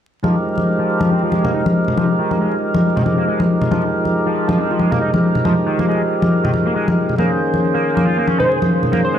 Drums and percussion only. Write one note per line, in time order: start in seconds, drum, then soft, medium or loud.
0.24 high conga medium
0.58 high conga medium
1.01 high conga medium
1.32 high conga medium
1.45 low conga medium
1.66 high conga medium
1.88 low conga medium
1.97 high conga medium
2.31 high conga medium
2.75 high conga medium
2.97 low conga medium
3.06 high conga medium
3.40 high conga medium
3.61 low conga medium
3.71 high conga medium
4.05 high conga medium
4.49 high conga medium
4.80 high conga medium
4.92 low conga medium
5.14 high conga medium
5.35 low conga medium
5.45 high conga medium
5.79 high conga medium
6.22 high conga medium
6.45 low conga medium
6.54 high conga medium
6.88 high conga medium
7.09 low conga medium
7.18 high conga medium
7.54 high conga medium
7.97 high conga medium
8.28 high conga medium
8.40 low conga medium
8.62 high conga medium
8.83 low conga medium
8.93 high conga medium